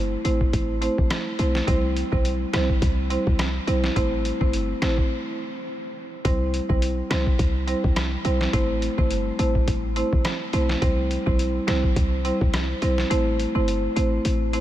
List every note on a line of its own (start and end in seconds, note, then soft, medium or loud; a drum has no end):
0.00 0.17 G1 medium
0.25 0.48 A1 medium
0.25 0.41 A3 medium
0.25 0.41 C4 medium
0.25 0.41 E4 medium
0.25 0.41 C5 medium
0.25 closed hi-hat medium
0.41 kick medium
0.53 0.89 A1 loud
0.53 kick loud
0.53 closed hi-hat medium
0.82 0.98 A3 medium
0.82 0.98 C4 medium
0.82 0.98 E4 medium
0.82 0.98 C5 medium
0.82 closed hi-hat medium
0.98 1.08 G1 medium
0.98 kick loud
1.10 cross-stick loud
1.10 snare loud
1.10 closed hi-hat medium
1.39 1.62 B1 loud
1.39 1.55 A3 medium
1.39 1.56 C4 medium
1.39 1.56 E4 medium
1.39 1.56 C5 medium
1.39 closed hi-hat soft
1.55 snare medium
1.67 2.03 C2 loud
1.67 2.08 G3 loud
1.67 2.08 C4 loud
1.67 2.09 E4 medium
1.67 2.09 C5 loud
1.67 kick loud
1.67 closed hi-hat medium
1.97 closed hi-hat medium
2.12 2.45 B1 medium
2.12 2.25 G3 medium
2.12 2.25 C4 medium
2.12 2.25 E4 medium
2.12 2.25 C5 medium
2.12 kick loud
2.25 closed hi-hat medium
2.53 2.76 C2 loud
2.53 2.70 G3 medium
2.53 2.70 C4 medium
2.53 2.70 E4 medium
2.53 2.70 C5 medium
2.53 cross-stick loud
2.53 snare loud
2.53 closed hi-hat medium
2.69 kick medium
2.82 3.17 C2 loud
2.82 kick loud
2.82 closed hi-hat medium
3.10 3.27 G3 medium
3.10 3.27 C4 medium
3.10 3.27 E4 medium
3.10 3.27 C5 medium
3.10 closed hi-hat medium
3.27 3.59 C2 medium
3.27 kick medium
3.39 cross-stick loud
3.39 snare loud
3.39 closed hi-hat medium
3.67 3.90 B1 medium
3.67 3.84 G3 medium
3.67 3.84 C4 medium
3.67 3.84 E4 medium
3.67 3.84 C5 medium
3.67 closed hi-hat soft
3.84 snare medium
3.96 4.32 A1 loud
3.96 4.37 A3 loud
3.96 4.37 C4 loud
3.96 4.37 E4 medium
3.96 4.37 C5 loud
3.96 kick loud
3.96 closed hi-hat medium
4.25 closed hi-hat medium
4.41 4.74 G1 medium
4.41 4.54 A3 medium
4.41 4.54 C4 medium
4.41 4.54 E4 medium
4.41 4.54 C5 medium
4.41 kick loud
4.53 closed hi-hat medium
4.82 5.05 A1 loud
4.82 4.98 A3 medium
4.82 4.98 C4 medium
4.82 4.98 E4 medium
4.82 4.99 C5 medium
4.82 cross-stick loud
4.82 snare loud
4.82 closed hi-hat medium
4.98 kick medium
6.25 6.60 C2 loud
6.25 6.66 G3 loud
6.25 6.66 C4 medium
6.25 6.66 E4 medium
6.25 6.66 C5 loud
6.25 kick loud
6.25 closed hi-hat medium
6.54 closed hi-hat medium
6.69 7.02 B1 medium
6.69 6.82 G3 medium
6.69 6.82 C4 medium
6.69 6.82 E4 medium
6.69 6.83 C5 medium
6.69 kick loud
6.82 closed hi-hat medium
7.10 7.33 C2 loud
7.10 7.27 G3 medium
7.10 7.27 C4 medium
7.10 7.27 E4 medium
7.10 7.27 C5 medium
7.10 cross-stick loud
7.10 snare loud
7.10 closed hi-hat medium
7.27 kick medium
7.39 7.75 C2 loud
7.39 kick loud
7.39 closed hi-hat medium
7.67 7.84 G3 medium
7.67 7.84 C4 medium
7.67 7.84 E4 medium
7.67 7.84 C5 medium
7.67 closed hi-hat medium
7.84 8.17 C2 medium
7.84 kick loud
7.96 cross-stick loud
7.96 snare loud
7.96 closed hi-hat medium
8.25 8.48 B1 loud
8.25 8.41 G3 medium
8.25 8.41 C4 medium
8.25 8.41 E4 medium
8.25 8.41 C5 medium
8.25 closed hi-hat soft
8.41 snare medium
8.53 8.89 A1 loud
8.53 8.94 A3 loud
8.53 8.94 C4 loud
8.53 8.94 E4 medium
8.53 8.94 C5 loud
8.53 kick loud
8.53 closed hi-hat medium
8.82 closed hi-hat medium
8.98 9.31 G1 medium
8.98 9.11 A3 medium
8.98 9.11 C4 medium
8.98 9.11 E4 medium
8.98 9.11 C5 medium
8.98 kick loud
9.11 closed hi-hat medium
9.39 9.62 A1 loud
9.39 9.55 A3 medium
9.39 9.55 C4 medium
9.39 9.56 E4 medium
9.39 9.56 C5 medium
9.39 closed hi-hat medium
9.55 kick medium
9.68 10.03 A1 loud
9.68 kick loud
9.68 closed hi-hat medium
9.96 10.12 A3 medium
9.96 10.13 C4 medium
9.96 10.13 E4 medium
9.96 10.13 C5 medium
9.96 closed hi-hat medium
10.13 10.23 G1 medium
10.13 kick medium
10.25 cross-stick loud
10.25 snare loud
10.25 closed hi-hat medium
10.53 10.76 B1 loud
10.53 10.70 A3 medium
10.53 10.70 C4 medium
10.53 10.70 E4 medium
10.53 10.70 C5 medium
10.53 closed hi-hat soft
10.69 snare medium
10.82 11.17 C2 loud
10.82 11.23 G3 loud
10.82 11.23 C4 loud
10.82 11.23 E4 medium
10.82 11.23 C5 loud
10.82 kick loud
10.82 closed hi-hat medium
11.11 closed hi-hat medium
11.26 11.59 B1 medium
11.26 11.39 G3 medium
11.26 11.39 C4 medium
11.26 11.40 E4 medium
11.26 11.40 C5 medium
11.26 kick loud
11.39 closed hi-hat medium
11.67 11.91 C2 loud
11.67 11.84 G3 medium
11.67 11.84 C4 medium
11.67 11.84 E4 medium
11.67 11.84 C5 medium
11.67 cross-stick medium
11.67 snare loud
11.67 closed hi-hat medium
11.84 kick medium
11.96 12.32 C2 loud
11.96 kick loud
11.96 closed hi-hat medium
12.25 12.41 G3 medium
12.25 12.41 C4 medium
12.25 12.41 E4 medium
12.25 12.41 C5 medium
12.25 closed hi-hat medium
12.41 12.74 C2 medium
12.41 kick loud
12.54 cross-stick loud
12.54 snare loud
12.54 closed hi-hat medium
12.82 13.05 B1 loud
12.82 12.98 G3 medium
12.82 12.98 C4 medium
12.82 12.98 E4 medium
12.82 12.98 C5 medium
12.82 closed hi-hat soft
12.98 snare medium
13.10 13.46 A1 loud
13.10 13.51 A3 loud
13.10 13.51 C4 medium
13.10 13.51 E4 loud
13.10 13.52 C5 loud
13.10 closed hi-hat medium
13.40 closed hi-hat medium
13.55 13.88 G1 loud
13.55 13.68 A3 medium
13.55 13.68 C4 medium
13.55 13.68 E4 medium
13.55 13.68 C5 medium
13.68 closed hi-hat medium
13.96 14.19 A1 loud
13.96 14.13 A3 medium
13.96 14.13 C4 medium
13.96 14.13 E4 medium
13.96 14.13 C5 medium
13.96 closed hi-hat medium
14.25 14.61 A1 loud
14.25 closed hi-hat medium
14.53 14.61 A3 medium
14.53 14.61 C4 medium
14.53 14.61 E4 medium
14.53 14.61 C5 medium
14.53 closed hi-hat medium